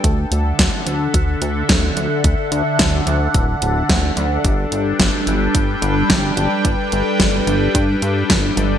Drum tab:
HH |xxxxxxxx|xxxxxxxx|xxxxxxxx|xxxxxxxx|
SD |--o---o-|--o---o-|--o---o-|--o---o-|
BD |o-o-o-o-|o-o-o-o-|o-o-o-o-|o-o-o-o-|